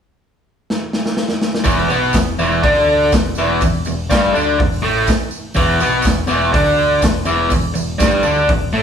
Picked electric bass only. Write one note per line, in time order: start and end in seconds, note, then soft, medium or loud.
1.66 1.89 E1 loud
1.91 2.13 B1 medium
2.14 2.37 E1 medium
2.38 2.61 E1 loud
2.64 3.09 D2 medium
3.13 3.35 E1 medium
3.36 3.59 E1 medium
3.62 3.84 E1 medium
3.88 4.10 E1 medium
4.11 4.33 G1 medium
4.37 4.58 D2 medium
4.61 4.83 E1 medium
4.85 5.07 A1 loud
5.57 5.80 E1 loud
5.81 6.04 B1 medium
6.06 6.28 E1 medium
6.29 6.52 E1 loud
6.54 7.00 D2 medium
7.02 7.25 E1 medium
7.28 7.51 E1 medium
7.51 7.75 E1 medium
7.78 7.99 E1 medium
8.00 8.23 G1 medium
8.27 8.49 D2 loud
8.49 8.73 E1 medium
8.74 8.82 A1 medium